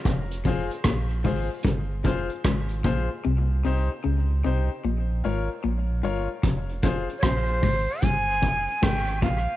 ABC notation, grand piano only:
X:1
M:4/4
L:1/8
Q:"Swing 16ths" 1/4=75
K:Fm
V:1 name="Grand piano"
z [FAc] z [FAc] z [FAc] z [FAc] | z [EGc] z [EGc] z [FBd] z [FBd] | z [FAc] z6 |]